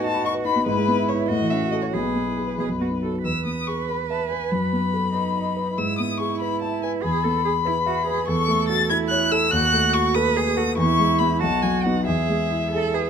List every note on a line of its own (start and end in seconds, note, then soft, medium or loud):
0.00 0.62 A2 medium
0.00 0.68 A3 soft
0.00 0.56 B3 medium
0.00 0.45 D#4 medium
0.00 0.65 F#4 medium
0.00 0.35 B4 medium
0.00 0.20 D#5 medium
0.05 0.25 A5 loud
0.14 0.31 B5 medium
0.24 0.41 D#5 medium
0.24 0.34 C#6 medium
0.35 0.51 B4 medium
0.45 0.62 D#4 medium
0.45 0.66 B5 medium
0.56 0.66 B3 medium
0.66 1.28 G#2 medium
0.66 1.30 E4 medium
0.66 1.10 B4 loud
0.77 0.94 G#3 medium
0.88 1.04 B3 medium
0.98 1.15 E4 medium
1.09 1.26 B4 medium
1.09 1.28 C#5 medium
1.20 1.30 E4 medium
1.28 1.92 A2 medium
1.28 1.95 F#4 medium
1.28 1.52 D#5 loud
1.41 1.58 E3 medium
1.50 1.68 C#4 medium
1.50 1.71 E5 medium
1.62 1.79 F#4 medium
1.72 1.90 A4 medium
1.72 1.76 D#5 medium
1.81 1.86 C#5 medium
1.81 1.94 C#5 soft
1.93 2.57 B1 medium
1.93 2.55 G#4 medium
1.93 3.00 B4 medium
2.05 2.22 B2 soft
2.16 2.33 B3 soft
2.26 2.44 E4 soft
2.37 2.55 G#4 soft
2.48 2.59 B4 soft
2.58 3.22 B1 medium
2.58 2.68 G#4 medium
2.69 2.87 F#2 soft
2.80 2.98 B3 soft
2.80 2.89 F#4 soft
2.91 3.09 D#4 soft
3.02 3.20 F#4 soft
3.02 3.23 A4 medium
3.13 3.24 B4 soft
3.24 4.47 E2 medium
3.24 5.10 B4 medium
3.24 3.44 E6 medium
3.45 3.79 B3 soft
3.45 3.68 D#6 medium
3.67 4.01 G#4 soft
3.67 3.88 C#6 medium
3.88 4.23 B4 soft
3.88 3.96 B5 medium
4.10 4.44 E5 soft
4.10 4.29 A5 medium
4.30 4.52 B4 soft
4.30 4.52 G#5 medium
4.51 5.74 F#2 medium
4.51 5.79 B5 medium
4.73 5.06 B3 soft
4.94 5.27 A4 soft
5.13 5.76 D#4 medium
5.13 5.48 B4 soft
5.36 5.70 D#5 soft
5.57 5.78 B4 medium
5.77 7.00 G#2 medium
5.77 7.04 E4 medium
5.77 5.98 E6 medium
5.99 6.32 B3 soft
5.99 6.19 D#6 medium
6.20 6.53 G#4 medium
6.20 6.40 C#6 medium
6.40 6.75 B4 soft
6.40 6.61 B5 medium
6.62 6.95 E5 medium
6.62 6.82 A5 medium
6.83 7.04 B4 medium
6.83 6.91 G#5 medium
7.03 8.25 E2 medium
7.03 7.25 G#4 medium
7.03 8.25 B5 medium
7.24 7.58 B3 medium
7.24 7.44 A4 medium
7.45 7.53 G#4 medium
7.45 7.78 G#4 medium
7.65 7.74 E4 medium
7.65 7.99 B4 medium
7.86 8.06 F#4 medium
7.86 8.20 E5 medium
8.06 8.29 G#4 medium
8.06 8.28 B4 medium
8.27 9.48 E2 medium
8.27 8.91 A4 medium
8.27 8.68 C#6 loud
8.48 8.82 A3 medium
8.69 9.03 F#4 medium
8.69 8.89 A6 loud
8.90 9.52 E4 medium
8.90 9.23 A4 medium
8.90 8.98 G#6 loud
9.09 9.44 C#5 medium
9.09 9.33 F#6 loud
9.32 9.53 A4 medium
9.32 9.53 E6 loud
9.51 10.74 D#2 medium
9.51 10.16 F#4 loud
9.51 9.95 F#6 loud
9.73 10.07 A3 medium
9.94 10.28 F#4 medium
9.94 10.16 C#6 loud
10.14 10.48 A4 medium
10.14 10.38 B4 loud
10.14 10.77 D#6 loud
10.36 10.58 G#4 loud
10.36 10.70 B4 medium
10.57 10.77 F#4 medium
10.57 10.78 A4 medium
10.77 11.39 E2 medium
10.77 11.41 E4 loud
10.77 11.20 C#6 loud
10.99 11.33 G#3 medium
11.19 11.39 B3 medium
11.19 11.40 E4 medium
11.19 11.40 B5 loud
11.40 12.04 B1 medium
11.40 12.05 F#4 medium
11.40 11.64 A5 loud
11.62 11.98 F#3 medium
11.62 11.85 G#5 loud
11.84 12.05 B3 medium
11.84 12.05 D#4 medium
11.84 12.06 F#5 loud
12.06 13.10 E2 medium
12.06 12.66 G#4 medium
12.06 13.10 E5 loud
12.29 12.64 G#3 medium
12.50 12.85 E4 medium
12.71 13.08 G#4 medium
12.71 12.96 A4 loud
12.94 13.10 G#4 medium
12.94 13.10 B4 medium